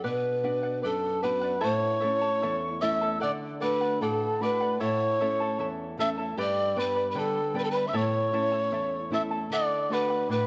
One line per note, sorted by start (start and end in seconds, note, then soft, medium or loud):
0.04 0.81 B2 medium
0.04 0.42 B4 medium
0.04 0.81 B4 medium
0.04 0.43 D5 medium
0.04 0.43 F#5 medium
0.43 1.07 B3 soft
0.43 1.08 D4 soft
0.43 1.08 F#4 soft
0.43 0.64 B4 medium
0.43 0.63 D5 medium
0.43 0.62 F#5 medium
0.63 0.81 D5 soft
0.63 0.83 F#5 soft
0.82 1.61 F#2 medium
0.82 1.25 A4 medium
0.82 1.21 B4 medium
0.82 1.22 D5 medium
0.82 1.23 F#5 medium
0.86 1.26 A5 medium
1.22 1.55 B3 soft
1.22 1.55 D4 soft
1.22 1.56 F#4 soft
1.22 1.43 B4 medium
1.22 1.65 B4 medium
1.22 1.42 D5 medium
1.22 1.40 F#5 medium
1.22 1.66 B5 medium
1.42 1.61 D5 soft
1.42 1.61 F#5 medium
1.61 2.40 A2 medium
1.61 2.00 E4 medium
1.61 2.00 A4 medium
1.61 2.02 C#5 medium
1.61 2.56 C#5 loud
1.61 1.99 E5 medium
1.61 2.00 A5 medium
1.61 2.83 C#6 medium
2.01 2.67 A3 soft
2.01 2.67 C#4 soft
2.01 2.22 E4 medium
2.01 2.67 E4 soft
2.01 2.21 A4 medium
2.01 2.21 E5 medium
2.01 2.20 A5 medium
2.22 2.42 E4 soft
2.22 2.42 A4 soft
2.22 2.42 A5 soft
2.42 3.20 E2 medium
2.42 2.81 E4 medium
2.42 2.81 A4 medium
2.42 2.80 E5 medium
2.42 2.82 A5 medium
2.81 3.14 A3 soft
2.81 3.14 C#4 soft
2.81 3.02 E4 medium
2.81 3.14 E4 medium
2.81 3.01 A4 medium
2.81 3.01 E5 medium
2.81 3.21 E5 loud
2.81 3.00 A5 medium
2.81 3.21 E6 medium
3.02 3.22 E4 soft
3.02 3.19 A4 soft
3.02 3.21 A5 medium
3.20 3.99 D3 medium
3.20 3.59 A4 medium
3.20 3.60 D5 medium
3.20 3.31 D5 loud
3.20 3.61 F#5 medium
3.20 3.31 D6 medium
3.61 4.25 A3 soft
3.61 4.25 D4 soft
3.61 4.26 F#4 medium
3.61 3.80 A4 medium
3.61 4.03 B4 loud
3.61 3.81 D5 medium
3.61 3.80 F#5 medium
3.61 4.04 B5 medium
3.81 4.01 D5 soft
3.81 4.01 F#5 soft
4.01 4.77 A2 medium
4.01 4.40 A4 medium
4.01 4.44 A4 medium
4.01 4.41 D5 medium
4.01 4.41 F#5 medium
4.01 4.43 A5 medium
4.40 4.72 A3 soft
4.40 4.72 D4 soft
4.40 4.72 F#4 medium
4.40 4.60 A4 medium
4.40 4.80 B4 medium
4.40 4.61 D5 medium
4.40 4.59 F#5 medium
4.40 4.80 B5 medium
4.60 4.80 D5 soft
4.60 4.80 F#5 medium
4.80 5.56 A2 medium
4.80 5.19 E4 medium
4.80 5.19 A4 medium
4.80 5.19 C#5 medium
4.80 5.67 C#5 loud
4.80 5.19 E5 medium
4.80 5.19 A5 medium
4.80 5.67 C#6 medium
5.20 5.83 A3 soft
5.20 5.83 C#4 soft
5.20 5.39 E4 medium
5.20 5.83 E4 soft
5.20 5.40 A4 medium
5.20 5.39 E5 medium
5.20 5.39 A5 medium
5.40 5.58 E4 soft
5.40 5.58 A4 soft
5.40 5.59 A5 soft
5.59 6.35 E2 medium
5.59 5.98 E4 medium
5.59 5.98 A4 medium
5.59 5.98 E5 medium
5.59 5.98 A5 medium
5.97 6.29 A3 medium
5.97 6.29 C#4 soft
5.97 6.29 E4 medium
5.97 6.17 E4 medium
5.97 6.17 A4 medium
5.97 6.18 E5 medium
5.97 6.09 E5 medium
5.97 6.16 A5 medium
5.97 6.08 E6 medium
6.17 6.38 E4 soft
6.17 6.38 A4 soft
6.17 6.37 A5 soft
6.37 7.13 G2 medium
6.37 6.76 G4 medium
6.37 6.76 B4 medium
6.37 6.76 D5 medium
6.37 6.81 D5 loud
6.37 6.75 G5 medium
6.37 6.77 B5 medium
6.37 6.81 D6 medium
6.76 7.39 G3 soft
6.76 7.39 B3 soft
6.76 7.39 D4 soft
6.76 6.95 B4 medium
6.76 7.10 B4 medium
6.76 6.95 D5 medium
6.76 6.96 G5 medium
6.76 6.94 B5 medium
6.76 7.09 B5 medium
6.95 7.14 B4 soft
6.95 7.15 D5 soft
6.95 7.15 B5 soft
7.10 7.20 B4 medium
7.10 7.20 B5 medium
7.15 7.91 D3 medium
7.15 7.56 A4 medium
7.15 7.54 B4 medium
7.15 7.55 D5 medium
7.15 7.53 G5 medium
7.15 7.56 A5 medium
7.15 7.55 B5 medium
7.54 7.86 G3 soft
7.54 7.86 B3 soft
7.54 7.86 D4 medium
7.54 7.75 B4 medium
7.54 7.75 D5 medium
7.54 7.74 G5 medium
7.54 7.73 B5 medium
7.58 7.65 B4 medium
7.58 7.66 B5 medium
7.64 7.72 A4 medium
7.64 7.74 A5 medium
7.71 7.89 B4 medium
7.71 7.90 B5 medium
7.71 7.94 B5 soft
7.76 7.93 B4 soft
7.76 7.94 D5 soft
7.87 7.98 E5 medium
7.87 7.98 E6 medium
7.93 8.70 A2 medium
7.93 8.32 E4 medium
7.93 8.33 A4 medium
7.93 8.33 C#5 medium
7.93 9.13 C#5 loud
7.93 8.32 E5 medium
7.93 8.33 A5 medium
7.93 9.13 C#6 medium
8.33 8.96 A3 soft
8.33 8.96 C#4 soft
8.33 8.52 E4 medium
8.33 8.96 E4 medium
8.33 8.52 A4 medium
8.33 8.53 E5 medium
8.33 8.51 A5 medium
8.52 8.71 E4 soft
8.52 8.72 A4 soft
8.52 8.72 A5 soft
8.72 9.48 E2 medium
8.72 9.11 E4 medium
8.72 9.12 A4 medium
8.72 9.11 E5 medium
8.72 9.12 A5 medium
9.11 9.43 A3 soft
9.11 9.43 C#4 soft
9.11 9.43 E4 medium
9.11 9.31 E4 medium
9.11 9.30 A4 medium
9.11 9.32 E5 medium
9.11 9.22 E5 medium
9.11 9.30 A5 medium
9.11 9.23 E6 medium
9.31 9.52 E4 soft
9.31 9.51 A4 soft
9.31 9.51 A5 medium
9.50 10.27 D3 medium
9.50 9.90 A4 medium
9.50 9.91 D5 medium
9.50 9.94 D5 medium
9.50 9.91 F#5 medium
9.50 9.94 D6 medium
9.89 10.47 A3 soft
9.89 10.47 D4 soft
9.89 10.47 F#4 soft
9.89 10.10 A4 medium
9.89 10.31 B4 medium
9.89 10.11 D5 medium
9.89 10.09 F#5 medium
9.89 10.31 B5 medium
10.10 10.29 D5 soft
10.10 10.30 F#5 soft
10.29 10.47 A2 medium
10.29 10.47 A4 medium
10.29 10.47 B4 medium
10.29 10.47 D5 medium
10.29 10.47 F#5 medium
10.33 10.47 B5 medium